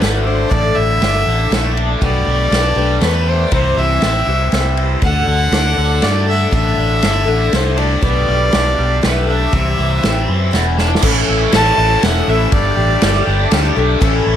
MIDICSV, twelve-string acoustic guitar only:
0, 0, Header, 1, 2, 480
1, 0, Start_track
1, 0, Tempo, 500000
1, 497, Time_signature, 3, 2, 24, 8
1, 13790, End_track
2, 0, Start_track
2, 0, Title_t, "Twelve-string acoustic guitar"
2, 0, Program_c, 0, 25
2, 0, Note_on_c, 0, 57, 56
2, 15, Note_on_c, 0, 62, 55
2, 24, Note_on_c, 0, 66, 55
2, 30, Note_on_c, 0, 69, 62
2, 226, Note_off_c, 0, 69, 0
2, 238, Note_on_c, 0, 69, 42
2, 248, Note_off_c, 0, 57, 0
2, 248, Note_off_c, 0, 66, 0
2, 256, Note_off_c, 0, 62, 0
2, 260, Note_on_c, 0, 66, 42
2, 266, Note_on_c, 0, 62, 33
2, 476, Note_off_c, 0, 62, 0
2, 476, Note_on_c, 0, 45, 67
2, 480, Note_on_c, 0, 50, 71
2, 488, Note_off_c, 0, 69, 0
2, 488, Note_on_c, 0, 57, 71
2, 488, Note_on_c, 0, 62, 78
2, 490, Note_off_c, 0, 66, 0
2, 494, Note_on_c, 0, 64, 66
2, 502, Note_on_c, 0, 69, 70
2, 960, Note_off_c, 0, 57, 0
2, 963, Note_on_c, 0, 57, 44
2, 968, Note_off_c, 0, 45, 0
2, 970, Note_off_c, 0, 50, 0
2, 972, Note_off_c, 0, 64, 0
2, 975, Note_off_c, 0, 62, 0
2, 979, Note_on_c, 0, 62, 58
2, 983, Note_on_c, 0, 64, 59
2, 994, Note_off_c, 0, 69, 0
2, 997, Note_on_c, 0, 69, 52
2, 1414, Note_off_c, 0, 57, 0
2, 1426, Note_on_c, 0, 57, 58
2, 1429, Note_off_c, 0, 62, 0
2, 1436, Note_off_c, 0, 64, 0
2, 1440, Note_on_c, 0, 62, 57
2, 1441, Note_off_c, 0, 69, 0
2, 1448, Note_on_c, 0, 64, 64
2, 1452, Note_on_c, 0, 69, 71
2, 1924, Note_off_c, 0, 57, 0
2, 1932, Note_off_c, 0, 62, 0
2, 1932, Note_on_c, 0, 47, 64
2, 1934, Note_on_c, 0, 55, 69
2, 1935, Note_off_c, 0, 64, 0
2, 1938, Note_off_c, 0, 69, 0
2, 1938, Note_on_c, 0, 57, 78
2, 1942, Note_on_c, 0, 67, 75
2, 1943, Note_on_c, 0, 62, 64
2, 1950, Note_on_c, 0, 71, 75
2, 2392, Note_off_c, 0, 57, 0
2, 2404, Note_on_c, 0, 57, 53
2, 2408, Note_off_c, 0, 62, 0
2, 2418, Note_off_c, 0, 47, 0
2, 2420, Note_on_c, 0, 62, 51
2, 2423, Note_off_c, 0, 67, 0
2, 2427, Note_off_c, 0, 71, 0
2, 2427, Note_on_c, 0, 67, 60
2, 2433, Note_off_c, 0, 55, 0
2, 2437, Note_on_c, 0, 71, 50
2, 2630, Note_off_c, 0, 71, 0
2, 2637, Note_off_c, 0, 67, 0
2, 2641, Note_on_c, 0, 71, 57
2, 2649, Note_on_c, 0, 67, 44
2, 2654, Note_off_c, 0, 57, 0
2, 2654, Note_off_c, 0, 62, 0
2, 2666, Note_on_c, 0, 62, 48
2, 2674, Note_on_c, 0, 57, 41
2, 2857, Note_off_c, 0, 57, 0
2, 2868, Note_on_c, 0, 57, 47
2, 2874, Note_off_c, 0, 67, 0
2, 2875, Note_off_c, 0, 62, 0
2, 2885, Note_on_c, 0, 67, 59
2, 2886, Note_on_c, 0, 62, 51
2, 2889, Note_off_c, 0, 71, 0
2, 2900, Note_on_c, 0, 71, 60
2, 3366, Note_on_c, 0, 48, 57
2, 3367, Note_off_c, 0, 57, 0
2, 3370, Note_on_c, 0, 52, 65
2, 3372, Note_on_c, 0, 55, 73
2, 3373, Note_off_c, 0, 62, 0
2, 3373, Note_off_c, 0, 67, 0
2, 3377, Note_on_c, 0, 60, 79
2, 3377, Note_on_c, 0, 64, 76
2, 3378, Note_off_c, 0, 71, 0
2, 3382, Note_on_c, 0, 72, 72
2, 3836, Note_off_c, 0, 55, 0
2, 3848, Note_on_c, 0, 55, 51
2, 3855, Note_off_c, 0, 60, 0
2, 3857, Note_off_c, 0, 48, 0
2, 3859, Note_off_c, 0, 52, 0
2, 3859, Note_off_c, 0, 64, 0
2, 3864, Note_off_c, 0, 72, 0
2, 3867, Note_on_c, 0, 60, 53
2, 3870, Note_on_c, 0, 64, 55
2, 3886, Note_on_c, 0, 72, 53
2, 4079, Note_off_c, 0, 72, 0
2, 4087, Note_off_c, 0, 64, 0
2, 4091, Note_on_c, 0, 72, 46
2, 4096, Note_off_c, 0, 60, 0
2, 4097, Note_off_c, 0, 55, 0
2, 4099, Note_on_c, 0, 64, 44
2, 4107, Note_on_c, 0, 60, 39
2, 4114, Note_on_c, 0, 55, 33
2, 4331, Note_off_c, 0, 55, 0
2, 4336, Note_off_c, 0, 60, 0
2, 4339, Note_off_c, 0, 72, 0
2, 4342, Note_on_c, 0, 55, 54
2, 4343, Note_off_c, 0, 64, 0
2, 4348, Note_on_c, 0, 60, 66
2, 4358, Note_on_c, 0, 64, 68
2, 4365, Note_on_c, 0, 72, 67
2, 4817, Note_off_c, 0, 55, 0
2, 4818, Note_on_c, 0, 50, 68
2, 4821, Note_on_c, 0, 57, 64
2, 4825, Note_off_c, 0, 60, 0
2, 4828, Note_off_c, 0, 64, 0
2, 4829, Note_on_c, 0, 62, 75
2, 4831, Note_on_c, 0, 66, 65
2, 4836, Note_off_c, 0, 72, 0
2, 4840, Note_on_c, 0, 69, 67
2, 5286, Note_off_c, 0, 57, 0
2, 5290, Note_on_c, 0, 57, 48
2, 5295, Note_off_c, 0, 62, 0
2, 5298, Note_off_c, 0, 66, 0
2, 5299, Note_on_c, 0, 62, 52
2, 5304, Note_off_c, 0, 50, 0
2, 5310, Note_on_c, 0, 66, 56
2, 5313, Note_off_c, 0, 69, 0
2, 5317, Note_on_c, 0, 69, 53
2, 5766, Note_off_c, 0, 57, 0
2, 5770, Note_on_c, 0, 57, 55
2, 5775, Note_off_c, 0, 62, 0
2, 5777, Note_off_c, 0, 66, 0
2, 5779, Note_on_c, 0, 62, 59
2, 5789, Note_on_c, 0, 66, 53
2, 5796, Note_off_c, 0, 69, 0
2, 5800, Note_on_c, 0, 69, 58
2, 5998, Note_off_c, 0, 69, 0
2, 6009, Note_on_c, 0, 69, 46
2, 6011, Note_off_c, 0, 66, 0
2, 6020, Note_off_c, 0, 57, 0
2, 6023, Note_on_c, 0, 66, 40
2, 6024, Note_off_c, 0, 62, 0
2, 6038, Note_on_c, 0, 62, 38
2, 6250, Note_off_c, 0, 62, 0
2, 6251, Note_on_c, 0, 45, 68
2, 6253, Note_on_c, 0, 50, 66
2, 6260, Note_off_c, 0, 69, 0
2, 6262, Note_on_c, 0, 62, 67
2, 6264, Note_on_c, 0, 57, 63
2, 6265, Note_off_c, 0, 66, 0
2, 6269, Note_on_c, 0, 64, 77
2, 6273, Note_on_c, 0, 69, 81
2, 6720, Note_off_c, 0, 57, 0
2, 6724, Note_on_c, 0, 57, 52
2, 6737, Note_off_c, 0, 64, 0
2, 6739, Note_off_c, 0, 62, 0
2, 6741, Note_off_c, 0, 45, 0
2, 6742, Note_off_c, 0, 50, 0
2, 6743, Note_on_c, 0, 62, 51
2, 6748, Note_on_c, 0, 64, 55
2, 6752, Note_off_c, 0, 69, 0
2, 6756, Note_on_c, 0, 69, 57
2, 6952, Note_off_c, 0, 69, 0
2, 6964, Note_on_c, 0, 69, 59
2, 6971, Note_off_c, 0, 64, 0
2, 6973, Note_off_c, 0, 62, 0
2, 6977, Note_off_c, 0, 57, 0
2, 6982, Note_on_c, 0, 64, 49
2, 6985, Note_on_c, 0, 62, 44
2, 6994, Note_on_c, 0, 57, 38
2, 7211, Note_off_c, 0, 57, 0
2, 7218, Note_off_c, 0, 69, 0
2, 7221, Note_off_c, 0, 62, 0
2, 7223, Note_on_c, 0, 57, 54
2, 7227, Note_off_c, 0, 64, 0
2, 7233, Note_on_c, 0, 62, 58
2, 7242, Note_on_c, 0, 64, 54
2, 7248, Note_on_c, 0, 69, 58
2, 7446, Note_off_c, 0, 69, 0
2, 7458, Note_on_c, 0, 69, 43
2, 7459, Note_off_c, 0, 64, 0
2, 7464, Note_off_c, 0, 62, 0
2, 7467, Note_off_c, 0, 57, 0
2, 7470, Note_on_c, 0, 64, 45
2, 7475, Note_on_c, 0, 62, 41
2, 7487, Note_on_c, 0, 57, 38
2, 7694, Note_off_c, 0, 62, 0
2, 7700, Note_off_c, 0, 57, 0
2, 7704, Note_on_c, 0, 59, 68
2, 7705, Note_off_c, 0, 69, 0
2, 7706, Note_on_c, 0, 62, 69
2, 7711, Note_off_c, 0, 64, 0
2, 7715, Note_on_c, 0, 67, 75
2, 7727, Note_on_c, 0, 69, 68
2, 8160, Note_off_c, 0, 59, 0
2, 8170, Note_off_c, 0, 62, 0
2, 8172, Note_on_c, 0, 59, 57
2, 8182, Note_on_c, 0, 62, 56
2, 8185, Note_off_c, 0, 67, 0
2, 8192, Note_off_c, 0, 69, 0
2, 8196, Note_on_c, 0, 67, 52
2, 8203, Note_on_c, 0, 69, 54
2, 8646, Note_off_c, 0, 59, 0
2, 8655, Note_off_c, 0, 62, 0
2, 8658, Note_on_c, 0, 59, 52
2, 8664, Note_off_c, 0, 67, 0
2, 8666, Note_on_c, 0, 62, 51
2, 8675, Note_on_c, 0, 67, 58
2, 8678, Note_off_c, 0, 69, 0
2, 8689, Note_on_c, 0, 69, 60
2, 8880, Note_off_c, 0, 69, 0
2, 8892, Note_on_c, 0, 69, 41
2, 8898, Note_off_c, 0, 67, 0
2, 8905, Note_off_c, 0, 59, 0
2, 8907, Note_off_c, 0, 62, 0
2, 8909, Note_on_c, 0, 67, 38
2, 8918, Note_on_c, 0, 62, 32
2, 9136, Note_on_c, 0, 48, 63
2, 9142, Note_off_c, 0, 69, 0
2, 9143, Note_on_c, 0, 52, 70
2, 9147, Note_on_c, 0, 55, 63
2, 9151, Note_off_c, 0, 62, 0
2, 9151, Note_off_c, 0, 67, 0
2, 9155, Note_on_c, 0, 60, 75
2, 9157, Note_on_c, 0, 64, 78
2, 9158, Note_on_c, 0, 72, 79
2, 9599, Note_off_c, 0, 55, 0
2, 9611, Note_off_c, 0, 60, 0
2, 9611, Note_on_c, 0, 55, 60
2, 9617, Note_off_c, 0, 64, 0
2, 9623, Note_off_c, 0, 48, 0
2, 9623, Note_on_c, 0, 60, 54
2, 9627, Note_off_c, 0, 52, 0
2, 9629, Note_on_c, 0, 64, 65
2, 9631, Note_off_c, 0, 72, 0
2, 9642, Note_on_c, 0, 72, 59
2, 10085, Note_off_c, 0, 55, 0
2, 10089, Note_on_c, 0, 56, 57
2, 10093, Note_off_c, 0, 60, 0
2, 10095, Note_off_c, 0, 64, 0
2, 10097, Note_on_c, 0, 62, 63
2, 10107, Note_on_c, 0, 64, 57
2, 10116, Note_off_c, 0, 72, 0
2, 10120, Note_on_c, 0, 71, 65
2, 10576, Note_on_c, 0, 45, 81
2, 10579, Note_off_c, 0, 56, 0
2, 10583, Note_off_c, 0, 62, 0
2, 10587, Note_off_c, 0, 64, 0
2, 10590, Note_on_c, 0, 57, 87
2, 10592, Note_on_c, 0, 52, 87
2, 10594, Note_off_c, 0, 71, 0
2, 10598, Note_on_c, 0, 61, 97
2, 10598, Note_on_c, 0, 64, 88
2, 10600, Note_on_c, 0, 69, 89
2, 11055, Note_off_c, 0, 57, 0
2, 11059, Note_on_c, 0, 57, 59
2, 11061, Note_off_c, 0, 61, 0
2, 11062, Note_off_c, 0, 45, 0
2, 11069, Note_off_c, 0, 52, 0
2, 11069, Note_off_c, 0, 64, 0
2, 11072, Note_on_c, 0, 61, 64
2, 11081, Note_on_c, 0, 64, 62
2, 11082, Note_off_c, 0, 69, 0
2, 11086, Note_on_c, 0, 69, 70
2, 11544, Note_off_c, 0, 57, 0
2, 11548, Note_off_c, 0, 61, 0
2, 11548, Note_on_c, 0, 57, 55
2, 11552, Note_off_c, 0, 64, 0
2, 11558, Note_on_c, 0, 61, 59
2, 11570, Note_on_c, 0, 64, 60
2, 11577, Note_off_c, 0, 69, 0
2, 11580, Note_on_c, 0, 69, 66
2, 11770, Note_off_c, 0, 69, 0
2, 11776, Note_off_c, 0, 64, 0
2, 11782, Note_on_c, 0, 69, 46
2, 11786, Note_off_c, 0, 57, 0
2, 11788, Note_on_c, 0, 64, 44
2, 11789, Note_off_c, 0, 61, 0
2, 11801, Note_on_c, 0, 61, 47
2, 11806, Note_on_c, 0, 57, 41
2, 12015, Note_off_c, 0, 57, 0
2, 12019, Note_on_c, 0, 55, 80
2, 12022, Note_off_c, 0, 69, 0
2, 12023, Note_off_c, 0, 61, 0
2, 12025, Note_off_c, 0, 64, 0
2, 12027, Note_on_c, 0, 62, 80
2, 12032, Note_on_c, 0, 67, 83
2, 12037, Note_on_c, 0, 69, 77
2, 12489, Note_off_c, 0, 55, 0
2, 12500, Note_off_c, 0, 62, 0
2, 12501, Note_on_c, 0, 55, 59
2, 12506, Note_off_c, 0, 67, 0
2, 12511, Note_on_c, 0, 62, 53
2, 12521, Note_on_c, 0, 67, 64
2, 12524, Note_off_c, 0, 69, 0
2, 12528, Note_on_c, 0, 69, 63
2, 12958, Note_off_c, 0, 55, 0
2, 12969, Note_on_c, 0, 55, 67
2, 12970, Note_off_c, 0, 62, 0
2, 12981, Note_on_c, 0, 62, 77
2, 12984, Note_off_c, 0, 67, 0
2, 12996, Note_off_c, 0, 69, 0
2, 12996, Note_on_c, 0, 67, 74
2, 13000, Note_on_c, 0, 69, 83
2, 13199, Note_off_c, 0, 69, 0
2, 13211, Note_on_c, 0, 69, 58
2, 13213, Note_off_c, 0, 55, 0
2, 13216, Note_off_c, 0, 67, 0
2, 13219, Note_off_c, 0, 62, 0
2, 13227, Note_on_c, 0, 67, 56
2, 13240, Note_on_c, 0, 62, 41
2, 13446, Note_on_c, 0, 45, 92
2, 13453, Note_off_c, 0, 69, 0
2, 13453, Note_on_c, 0, 52, 83
2, 13457, Note_on_c, 0, 57, 95
2, 13458, Note_off_c, 0, 62, 0
2, 13458, Note_off_c, 0, 67, 0
2, 13461, Note_on_c, 0, 64, 88
2, 13462, Note_on_c, 0, 61, 106
2, 13464, Note_on_c, 0, 69, 85
2, 13790, Note_off_c, 0, 45, 0
2, 13790, Note_off_c, 0, 52, 0
2, 13790, Note_off_c, 0, 57, 0
2, 13790, Note_off_c, 0, 61, 0
2, 13790, Note_off_c, 0, 64, 0
2, 13790, Note_off_c, 0, 69, 0
2, 13790, End_track
0, 0, End_of_file